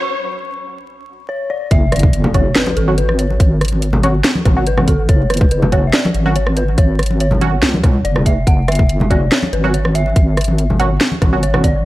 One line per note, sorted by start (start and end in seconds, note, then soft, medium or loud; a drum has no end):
0.02 1.25 C#6 medium
1.29 1.51 C#5 loud
1.50 1.72 D5 loud
1.71 2.54 F#1 loud
1.71 1.93 E5 loud
1.71 kick loud
1.71 closed hi-hat medium
1.71 impact medium
1.92 2.31 D5 loud
1.92 cross-stick medium
1.92 closed hi-hat medium
1.92 muted conga soft
1.96 closed hi-hat medium
1.99 kick loud
1.99 closed hi-hat medium
2.04 muted conga medium
2.13 closed hi-hat medium
2.24 high conga medium
2.24 low conga loud
2.34 2.44 F#3 medium
2.34 2.44 C#4 medium
2.34 2.44 F#4 medium
2.34 2.56 C#5 loud
2.34 kick medium
2.34 closed hi-hat medium
2.55 2.77 B4 loud
2.55 cross-stick medium
2.55 snare loud
2.55 closed hi-hat medium
2.66 muted conga medium
2.66 high conga medium
2.77 3.38 G#1 loud
2.77 2.98 A4 medium
2.77 closed hi-hat medium
2.88 2.97 F#3 medium
2.88 2.97 C#4 medium
2.88 2.97 F#4 loud
2.98 3.17 B4 medium
2.98 closed hi-hat medium
3.09 cross-stick medium
3.19 3.99 C#5 medium
3.19 open hi-hat loud
3.30 muted conga soft
3.40 4.23 G#1 loud
3.40 kick loud
3.40 closed hi-hat medium
3.61 cross-stick medium
3.61 closed hi-hat medium
3.61 muted conga soft
3.65 closed hi-hat medium
3.68 closed hi-hat medium
3.72 muted conga soft
3.82 closed hi-hat medium
3.93 high conga medium
3.93 low conga loud
4.03 4.13 F#3 loud
4.03 4.13 C#4 medium
4.03 4.13 F#4 loud
4.03 closed hi-hat medium
4.24 snare loud
4.24 closed hi-hat medium
4.35 high conga loud
4.45 5.07 G#1 loud
4.45 kick loud
4.45 cross-stick soft
4.45 closed hi-hat medium
4.45 low conga medium
4.57 4.66 F#3 medium
4.57 4.66 C#4 medium
4.57 4.66 F#4 medium
4.67 4.77 B4 medium
4.67 closed hi-hat medium
4.78 4.87 F#3 medium
4.78 4.87 C#4 medium
4.78 4.87 F#4 medium
4.78 cross-stick medium
4.78 low conga medium
4.88 5.10 A4 medium
4.88 kick medium
4.88 open hi-hat loud
5.09 5.92 F#1 loud
5.09 5.31 C#5 loud
5.09 kick loud
5.09 closed hi-hat medium
5.30 5.50 B4 medium
5.30 cross-stick medium
5.30 closed hi-hat medium
5.30 muted conga soft
5.34 closed hi-hat medium
5.37 kick loud
5.37 closed hi-hat medium
5.41 muted conga medium
5.51 5.71 B4 medium
5.51 closed hi-hat medium
5.62 high conga medium
5.62 low conga loud
5.72 5.82 F#3 medium
5.72 5.82 C#4 medium
5.72 5.82 F#4 medium
5.72 5.79 C#5 medium
5.72 kick medium
5.72 closed hi-hat medium
5.87 5.94 E5 medium
5.93 6.37 D5 loud
5.93 cross-stick medium
5.93 snare loud
5.93 closed hi-hat medium
6.05 muted conga medium
6.05 high conga medium
6.14 6.76 G#1 loud
6.14 closed hi-hat medium
6.26 6.35 F#3 loud
6.26 6.35 C#4 medium
6.26 6.35 F#4 loud
6.36 6.45 C#5 loud
6.36 closed hi-hat medium
6.47 cross-stick medium
6.57 6.67 B4 medium
6.57 open hi-hat medium
6.68 muted conga soft
6.78 7.61 G#1 loud
6.78 7.17 C#5 loud
6.78 kick loud
6.78 closed hi-hat medium
6.99 cross-stick medium
6.99 closed hi-hat soft
6.99 muted conga soft
7.03 closed hi-hat medium
7.06 closed hi-hat medium
7.11 muted conga medium
7.20 8.07 C#5 loud
7.20 closed hi-hat medium
7.31 high conga medium
7.31 low conga medium
7.41 7.51 F#3 loud
7.41 7.51 C#4 medium
7.41 7.51 F#4 loud
7.41 closed hi-hat medium
7.63 8.03 C#2 loud
7.63 snare loud
7.63 closed hi-hat medium
7.74 high conga medium
7.84 kick loud
7.84 cross-stick medium
7.84 closed hi-hat medium
7.84 low conga medium
8.05 8.45 F#1 loud
8.05 8.26 D5 loud
8.05 closed hi-hat medium
8.16 cross-stick medium
8.16 low conga medium
8.26 8.46 E5 loud
8.26 kick medium
8.26 open hi-hat medium
8.47 9.30 F#1 loud
8.47 8.69 F#5 loud
8.47 kick loud
8.47 closed hi-hat medium
8.68 9.07 E5 loud
8.68 cross-stick medium
8.68 closed hi-hat soft
8.68 muted conga soft
8.72 closed hi-hat medium
8.75 kick loud
8.75 closed hi-hat medium
8.75 muted conga soft
8.89 closed hi-hat medium
9.00 high conga medium
9.00 low conga loud
9.10 9.20 F#3 medium
9.10 9.20 C#4 medium
9.10 9.20 F#4 medium
9.10 9.32 D5 loud
9.10 kick medium
9.10 closed hi-hat medium
9.32 9.51 C#5 loud
9.32 cross-stick medium
9.32 snare loud
9.32 closed hi-hat medium
9.43 muted conga medium
9.43 high conga medium
9.53 10.15 G#1 loud
9.53 9.62 B4 loud
9.53 closed hi-hat medium
9.64 9.73 F#3 loud
9.64 9.73 C#4 medium
9.64 9.73 F#4 loud
9.74 9.96 C#5 loud
9.74 closed hi-hat medium
9.85 cross-stick medium
9.95 10.75 E5 loud
9.95 open hi-hat medium
10.06 muted conga soft
10.16 10.99 G#1 medium
10.16 kick loud
10.16 closed hi-hat medium
10.37 cross-stick medium
10.37 closed hi-hat soft
10.37 muted conga soft
10.41 closed hi-hat medium
10.44 closed hi-hat medium
10.44 muted conga medium
10.58 closed hi-hat medium
10.70 high conga medium
10.70 low conga medium
10.80 10.89 F#3 loud
10.80 10.89 C#4 medium
10.80 10.89 F#4 loud
10.80 closed hi-hat medium
11.01 snare loud
11.01 closed hi-hat medium
11.12 high conga medium
11.22 11.84 G#1 loud
11.22 kick loud
11.22 cross-stick medium
11.22 closed hi-hat soft
11.22 low conga medium
11.33 11.42 F#3 medium
11.33 11.42 C#4 medium
11.33 11.42 F#4 medium
11.43 11.65 C#5 loud
11.43 closed hi-hat medium
11.54 11.63 F#3 medium
11.54 11.63 C#4 medium
11.54 11.63 F#4 medium
11.54 cross-stick medium
11.54 low conga medium
11.64 11.85 D5 loud
11.64 kick medium
11.64 open hi-hat medium